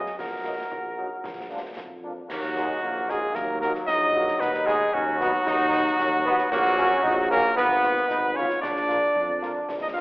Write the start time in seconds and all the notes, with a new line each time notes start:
Already playing: G#4 D#5
0.06 snare
0.18 A#1 F#4 A#4, concert bass drum, snare, crash
0.44 F#3 A#3 D#4 F#4
0.70 A#1, concert bass drum
0.97 F#3 A#3 D#4 F#4
1.23 A#1, concert bass drum, snare
1.50 F3 A#3 D4 F4
1.76 F2, concert bass drum, snare
2.03 F3 A#3 D4 F4
2.28 D#2 F#3 A#3 F#4, concert bass drum, snare, crash
2.42 snare
2.56 G#3 A#3 D#4 F#4, snare
2.81 A#1 A#3, concert bass drum
3.09 G#3 A#3 D#4 F#4 G#4, snare
3.34 D#2 F#3 A#3 A#4, concert bass drum, snare
3.60 A#3 D#4 F#4 A#4, snare
3.75 snare
3.87 A#1 D#4 D#5, concert bass drum, snare
4.15 A#3 D#4 F#4
4.28 snare
4.40 D#2 B3 D#4 B4, concert bass drum, snare, crash
4.54 snare
4.66 G#3 B3 D#4 F#4 G#4, snare
4.93 D#2 F#3 C#4 F#4, concert bass drum
5.20 B3 D#4 F#4, snare
5.45 D#2 D#4, concert bass drum, snare
5.72 B3 D#4 F#4, snare
5.87 snare
5.98 D#2 C#4, concert bass drum, snare
6.24 B3 D#4 F#4
6.39 snare
6.51 A#1 F#3 A#3 F#4, concert bass drum, snare, crash
6.65 snare
6.77 A#3 C#4 F#4, snare
7.03 A#1 D#4, concert bass drum
7.30 A#3 C#4 F#4 A#4, snare
7.56 G#1 B3 B4, concert bass drum, snare
7.83 B3 F4, snare
7.97 snare
8.08 G#1 D#4, concert bass drum, snare
8.34 B3 C#4 F4 C#5
8.50 snare
8.61 A#1 D4 D5, concert bass drum, snare, crash
8.76 snare
8.88 A#3 F4, snare
9.16 F2, concert bass drum
9.41 A#3 F4, snare
9.68 A#1, concert bass drum, snare
9.80 D#4 D#5
9.94 A#3 F4 F5